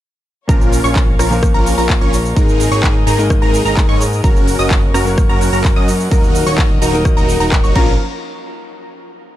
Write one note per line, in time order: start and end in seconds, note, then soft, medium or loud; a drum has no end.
0.48 0.82 A#1 medium
0.48 1.28 A#2 medium
0.48 1.28 F3 medium
0.48 1.28 A#3 medium
0.48 0.81 C#4 medium
0.48 1.28 C#4 medium
0.48 0.81 F4 medium
0.48 0.81 A#4 medium
0.48 6.07 A#4 medium
0.48 1.29 A#4 medium
0.48 2.35 C#5 medium
0.48 2.35 F5 medium
0.48 0.81 A#5 medium
0.48 2.35 C#6 medium
0.48 kick loud
0.48 shaker soft
0.61 shaker soft
0.72 open hi-hat loud
0.72 shaker medium
0.84 1.17 A#1 loud
0.84 1.07 C#4 medium
0.84 1.07 F4 medium
0.84 1.07 C#5 loud
0.84 1.07 C#6 medium
0.84 shaker soft
0.96 kick loud
0.96 clap loud
0.96 shaker soft
1.19 1.52 A#1 loud
1.19 1.33 C#4 medium
1.19 1.33 F4 medium
1.19 1.33 A#4 loud
1.19 1.33 A#5 medium
1.19 cross-stick medium
1.19 open hi-hat loud
1.19 shaker medium
1.30 2.33 A#2 medium
1.30 2.33 F3 medium
1.30 2.34 A#3 medium
1.30 2.34 C#4 medium
1.30 2.34 A#4 loud
1.30 shaker soft
1.43 kick loud
1.43 cross-stick medium
1.43 shaker soft
1.54 1.75 A#1 medium
1.54 1.75 C#4 medium
1.54 1.75 F4 medium
1.54 1.75 A#4 loud
1.54 1.75 A#5 loud
1.66 open hi-hat loud
1.66 shaker medium
1.78 1.99 A#1 medium
1.78 1.98 C#4 medium
1.78 1.98 F4 medium
1.78 1.98 A#4 medium
1.78 1.98 A#5 medium
1.78 shaker soft
1.90 kick loud
1.90 clap loud
1.90 shaker soft
2.01 2.34 A#1 loud
2.01 2.15 C#4 medium
2.01 2.15 F4 medium
2.01 2.15 C#5 loud
2.01 2.15 C#6 medium
2.13 open hi-hat loud
2.13 shaker medium
2.26 shaker soft
2.35 2.69 G#1 medium
2.35 3.15 G#2 medium
2.35 3.15 G#3 medium
2.35 3.16 A#3 medium
2.35 2.69 D#4 medium
2.35 3.16 D#4 medium
2.35 2.69 G#4 medium
2.35 2.69 A#4 medium
2.35 3.16 A#4 medium
2.35 4.22 D#5 medium
2.35 4.22 G#5 medium
2.35 2.69 A#5 medium
2.35 4.22 D#6 medium
2.35 kick loud
2.35 shaker soft
2.49 shaker soft
2.60 open hi-hat loud
2.60 shaker medium
2.71 3.04 G#1 loud
2.71 2.94 D#4 medium
2.71 2.94 G#4 medium
2.71 2.94 C#5 loud
2.71 2.94 C#6 medium
2.71 shaker soft
2.83 kick loud
2.83 clap loud
2.83 shaker soft
3.07 3.40 G#1 loud
3.07 3.21 D#4 medium
3.07 3.21 G#4 medium
3.07 3.21 A#4 loud
3.07 3.21 A#5 medium
3.07 open hi-hat loud
3.07 shaker medium
3.17 4.20 G#2 medium
3.17 4.21 G#3 medium
3.17 4.21 A#3 medium
3.17 4.21 D#4 medium
3.17 4.22 A#4 loud
3.17 shaker soft
3.30 kick loud
3.30 cross-stick medium
3.30 shaker soft
3.42 3.63 G#1 medium
3.42 3.63 D#4 medium
3.42 3.63 G#4 medium
3.42 3.63 A#4 loud
3.42 3.63 A#5 loud
3.54 open hi-hat loud
3.54 shaker medium
3.65 3.86 G#1 medium
3.65 3.86 D#4 medium
3.65 3.86 G#4 medium
3.65 3.86 A#4 loud
3.65 3.86 A#5 medium
3.65 shaker soft
3.77 kick loud
3.77 clap loud
3.77 shaker soft
3.89 4.22 G#2 loud
3.89 4.03 D#4 medium
3.89 4.03 G#4 medium
3.89 4.03 C#5 loud
3.89 4.03 C#6 medium
4.01 open hi-hat loud
4.01 shaker medium
4.13 shaker soft
4.23 4.57 F#1 medium
4.23 5.03 F#3 medium
4.23 5.03 A#3 medium
4.23 4.56 C#4 medium
4.23 5.03 C#4 medium
4.23 4.56 F#4 medium
4.23 4.56 A#4 medium
4.23 5.04 A#4 medium
4.23 6.10 C#5 medium
4.23 7.72 F#5 medium
4.23 4.56 A#5 medium
4.23 6.10 C#6 medium
4.23 kick loud
4.23 shaker soft
4.37 shaker soft
4.47 open hi-hat loud
4.47 shaker medium
4.59 4.92 F#1 loud
4.59 4.82 C#4 medium
4.59 4.82 F#4 medium
4.59 4.82 D#5 loud
4.59 4.82 D#6 loud
4.59 shaker soft
4.71 kick loud
4.71 clap loud
4.71 shaker soft
4.94 5.27 F#1 medium
4.94 5.08 C#4 medium
4.94 5.08 F#4 medium
4.94 5.08 A#4 loud
4.94 5.08 A#5 medium
4.94 cross-stick medium
4.94 open hi-hat loud
4.94 shaker medium
5.05 6.08 F#3 medium
5.05 6.08 A#3 medium
5.05 6.09 C#4 medium
5.05 6.09 A#4 loud
5.05 shaker soft
5.18 kick loud
5.18 cross-stick medium
5.18 shaker soft
5.29 5.50 F#1 medium
5.29 5.50 C#4 medium
5.29 5.50 F#4 medium
5.29 5.50 A#4 medium
5.29 5.50 A#5 loud
5.41 open hi-hat loud
5.41 shaker medium
5.53 5.74 F#1 loud
5.53 5.73 C#4 medium
5.53 5.73 F#4 medium
5.53 5.73 A#4 medium
5.53 5.73 A#5 medium
5.53 shaker soft
5.64 kick loud
5.64 clap loud
5.64 shaker soft
5.76 6.09 F#2 loud
5.76 5.90 C#4 medium
5.76 5.90 F#4 medium
5.76 5.90 D#5 loud
5.76 5.90 D#6 loud
5.88 open hi-hat loud
5.88 shaker medium
6.00 shaker soft
6.10 6.44 D#1 medium
6.10 6.90 F#3 medium
6.10 6.90 A#3 medium
6.10 6.44 D#4 medium
6.10 6.91 D#4 medium
6.10 6.44 F#4 medium
6.10 6.44 A#4 medium
6.10 7.74 A#4 medium
6.10 6.91 A#4 medium
6.10 7.74 D#5 medium
6.10 6.44 A#5 medium
6.10 7.74 D#6 medium
6.10 kick loud
6.10 shaker soft
6.24 shaker soft
6.35 open hi-hat loud
6.35 shaker medium
6.46 6.79 D#1 loud
6.46 6.69 D#4 medium
6.46 6.69 F#4 medium
6.46 6.69 C#5 loud
6.46 6.69 C#6 medium
6.46 shaker soft
6.58 kick loud
6.58 clap loud
6.58 shaker soft
6.82 7.15 D#1 loud
6.82 6.96 D#4 medium
6.82 6.96 F#4 medium
6.82 6.96 A#4 loud
6.82 6.96 A#5 medium
6.82 open hi-hat loud
6.82 shaker medium
6.92 7.75 F#3 medium
6.92 7.73 A#3 medium
6.92 7.76 D#4 medium
6.92 7.76 A#4 loud
6.92 shaker soft
7.05 kick loud
7.05 cross-stick medium
7.05 shaker soft
7.17 7.38 D#1 medium
7.17 7.38 D#4 medium
7.17 7.37 F#4 medium
7.17 7.38 A#4 medium
7.17 7.37 A#5 loud
7.17 shaker soft
7.29 open hi-hat loud
7.29 shaker medium
7.40 7.61 D#1 loud
7.40 7.61 D#4 medium
7.40 7.61 F#4 medium
7.40 7.61 A#4 loud
7.40 7.61 A#5 medium
7.40 shaker soft
7.52 kick loud
7.52 clap loud
7.52 shaker soft
7.64 7.75 D#1 loud
7.64 7.75 D#4 medium
7.64 7.75 F#4 medium
7.64 7.75 C#5 loud
7.64 7.75 C#6 medium
7.64 shaker soft
7.74 7.97 A#1 medium
7.74 7.92 F3 medium
7.74 7.93 A#3 medium
7.74 7.97 A#3 medium
7.74 7.93 C#4 medium
7.74 7.97 F4 medium
7.74 7.93 F4 medium
7.74 7.93 A#4 loud
7.74 7.94 A#4 medium
7.74 7.97 C#5 medium
7.74 7.97 F5 medium
7.74 7.93 A#5 medium
7.74 kick loud
7.74 crash medium